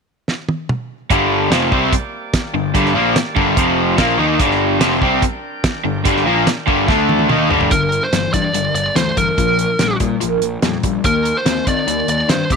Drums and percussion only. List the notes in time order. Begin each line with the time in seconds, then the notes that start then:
0.28 snare
0.49 high tom
0.69 mid tom
1.10 kick, closed hi-hat
1.52 snare, closed hi-hat
1.72 kick
1.93 kick, closed hi-hat
2.34 kick, snare, closed hi-hat
2.75 kick, closed hi-hat
2.85 snare
3.16 snare, closed hi-hat
3.37 kick
3.57 kick, closed hi-hat
3.98 kick, snare, closed hi-hat
4.40 kick, closed hi-hat
4.51 snare
4.81 snare, closed hi-hat
5.02 kick
5.22 kick, closed hi-hat
5.64 kick, snare, closed hi-hat
6.05 kick, closed hi-hat
6.16 snare
6.47 snare, closed hi-hat
6.68 kick
6.88 kick, snare
7.09 high tom
7.19 high tom
7.29 mid tom
7.51 floor tom
7.61 floor tom
7.71 kick, closed hi-hat
7.92 closed hi-hat
8.13 snare, closed hi-hat
8.34 kick, closed hi-hat
8.54 closed hi-hat
8.75 closed hi-hat
8.96 snare, closed hi-hat
9.17 kick, closed hi-hat
9.38 kick, closed hi-hat
9.59 closed hi-hat
9.79 snare, closed hi-hat
10.00 kick, closed hi-hat
10.21 closed hi-hat
10.42 closed hi-hat
10.62 snare, closed hi-hat
10.83 kick, closed hi-hat
11.04 kick, closed hi-hat
11.25 closed hi-hat
11.46 snare, closed hi-hat
11.56 snare
11.67 kick, closed hi-hat
11.88 closed hi-hat
12.08 closed hi-hat
12.29 snare, closed hi-hat
12.50 kick, closed hi-hat